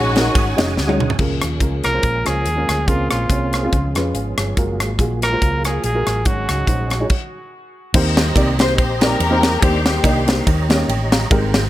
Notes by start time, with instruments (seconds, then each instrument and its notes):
Already playing: fingered electric bass A#1, upright piano G#2, string section C#4 D#4 F#4, tonewheel organ C#5 F#5 G#5 D#6
0.14 upright piano G#3 C#4 D#4 F#4 A#4, snare, ride
0.35 fingered electric bass G#1, kick, ride
0.57 fingered electric bass F1, upright piano G#3 C#4 D#4 F#4 D#5, snare, ride
0.77 fingered electric bass D2, snare
0.87 upright piano G#3 C#4 D#4 F#4 C#5, high tom
1.00 mid tom
1.10 floor tom
1.19 fingered electric bass C#2, upright piano C#3 G#3 C#4 F4 A#4, tonewheel organ F3 A#3 C#4 G#4, french horn section G#3 A#3 F4, kick, crash
1.42 fingered electric bass D#2, cross-stick, closed hi-hat
1.60 fingered electric bass C#2, upright piano G#3 C#4 F4 A#4, kick, closed hi-hat
1.84 fingered electric bass C2, trumpet A#4, cross-stick, closed hi-hat
1.93 upright piano G#3 C#4 F4 C5
2.03 fingered electric bass A#1, kick, closed hi-hat
2.25 fingered electric bass C#2, upright piano G#3 C#4 F4 C5, trumpet G#4, cross-stick, closed hi-hat
2.46 fingered electric bass D#2, closed hi-hat
2.56 upright piano G#3 C#4 F4 A#4
2.69 fingered electric bass D2, cross-stick, closed hi-hat
2.87 fingered electric bass C#2, upright piano C#3 G#3 C4 C#4 A#4, french horn section G#3 C5, tonewheel organ A#3 C4 C#4, trumpet F4, kick, closed hi-hat
3.11 fingered electric bass A#1, trumpet F4, cross-stick, closed hi-hat
3.30 fingered electric bass C2, upright piano G#3 C4 C#4 C#5, kick, closed hi-hat
3.53 cross-stick, closed hi-hat
3.63 upright piano G#3 C4 C#4 F4
3.72 fingered electric bass C#2, upright piano C#3, french horn section F3 B3, tonewheel organ F3 B3 C#4, kick, closed hi-hat
3.95 fingered electric bass F2, upright piano G#3 C#4 F4 B4, cross-stick, closed hi-hat
4.14 fingered electric bass G#1, upright piano B4 F5, closed hi-hat
4.38 fingered electric bass G1, upright piano G#4 C#5, cross-stick, closed hi-hat
4.57 fingered electric bass F#1, french horn section F#3 A#3 F4, tonewheel organ F#3 A#3 F4, upright piano G#3 F4 F#4 A#4, kick, closed hi-hat
4.80 fingered electric bass G#1, cross-stick, closed hi-hat
4.98 fingered electric bass A#1, upright piano G#3 F4 F#4 G#4, kick, closed hi-hat
5.22 trumpet A#4, cross-stick, closed hi-hat
5.32 upright piano G#3 F4 F#4 C5
5.41 fingered electric bass C#2, kick, closed hi-hat
5.64 upright piano G#3 F4 F#4 A#4, trumpet G#4, cross-stick, closed hi-hat
5.84 fingered electric bass A#1, trumpet G#4, closed hi-hat
5.94 upright piano G#3 F4 F#4 A#4
6.07 fingered electric bass A1, cross-stick, closed hi-hat
6.25 fingered electric bass G#1, upright piano G#2 G#3 D#4 F#4 C#5, french horn section C#4 D#4, tonewheel organ C#4 D#4, trumpet F#4, kick, closed hi-hat
6.49 fingered electric bass C#2, cross-stick, closed hi-hat
6.67 fingered electric bass A#1, upright piano G#3 D#4 F#4 C5, kick, closed hi-hat
6.90 cross-stick, closed hi-hat
7.00 upright piano G#3 D#4 F#4 C#5
7.10 kick, crash
7.94 fingered electric bass D#2, upright piano D#3 A#3 C4 D#4 G4 C5, tonewheel organ G4 C5 D#5 A#5, kick, crash
8.17 snare, ride
8.35 fingered electric bass C2, upright piano A#3 C4 D#4 G4 D5, kick, ride
8.59 upright piano A#3 C4 D#4 G4 C5, string section C5, snare, ride
8.78 fingered electric bass A#1, string section G4 C5, kick, ride
9.01 upright piano A#3 C4 D#4 G4 D5, string section G4 A#4, snare, ride
9.20 fingered electric bass E2, ride
9.31 upright piano A#3 C4 D#4 G4 C5
9.43 snare, ride
9.62 fingered electric bass D#2, upright piano D#3 A#3 D4 D#4 G4 C5, string section A#3 C4 G4, tonewheel organ A#4 D5 D#5 C6, kick, ride
9.86 string section A#3 C4 G4, snare, ride
10.03 fingered electric bass C2, upright piano A#3 D4 D#4 G4 D#5, kick, ride
10.26 upright piano A#3 D4 D#4 G4 C5, snare, ride
10.46 fingered electric bass D#2, upright piano D#3, tonewheel organ G4 C#5 A#5, kick, ride
10.69 upright piano A#3 C#4 D#4 G4 C#5, snare, ride
10.88 fingered electric bass A1, upright piano C#5 G5, ride
11.12 upright piano F5 A#5, snare, ride
11.30 fingered electric bass G#1, upright piano G#2 G#3 C4 D#4 G4 A#4, tonewheel organ G#3 C5 G5, kick, ride
11.54 snare, ride